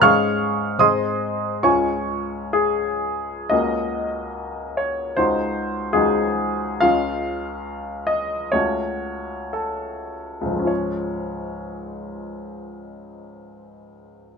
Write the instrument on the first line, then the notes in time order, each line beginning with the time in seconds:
grand piano
0.02 G#2 G#3 C#4 G#4 F5 C#6 F6
0.79 G#2 G#3 C4 G#4 D#5 C6 D#6
1.63 C#2 G#3 C#4 F4 C#5 G#5 C#6
2.53 G#4
3.50 C#2 A#3 C#4 F#4 D#5
4.77 C#5
5.16 C#2 G#3 D#4 F#4 C5
5.93 C#2 G#3 D#4 F#4 G#4
6.80 C#2 G#3 C#4 F4 F5
8.07 D#5
8.52 C#2 A3 C#4 F#4 C#5
9.53 A4
10.41 C#2
10.45 G#2
10.51 F3
10.55 G#3 C#4
10.64 F4 C#5